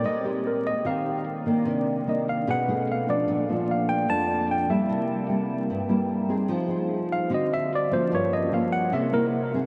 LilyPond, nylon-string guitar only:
\new Staff \with { instrumentName = "Nylon-string guitar" } { \time 4/4 \key c \phrygian \tempo 4 = 149 << { <c' g' bes'>8 <c' g' bes'>4. <c' g' bes'>4. <ees bes d'>8~ | <ees bes d'>4 <ees bes d'>4 <a dis' gis'>8 <a dis' gis'>4 <f a d'>8~ | <f a d'>8 <f a d'>4. <f a d'>4. <g bes e'>8~ | <g bes e'>4 <g bes e'>4 r8 <g bes e'>4 <c' ees' aes'>8~ |
<c' ees' aes'>8 <c' ees' aes'>4. <c' ees' fis'>4. <f bes des'>8~ | <f bes des'>4 <f bes des'>4 <bes e' gis'>8 <bes e' gis'>4 <c' dis' gis'>8 | } \\ { aes2 ees2 | c2 b,2 | bes,2 f,2 | c2 g,2 |
f2 d2 | g,2 c2 | } >> }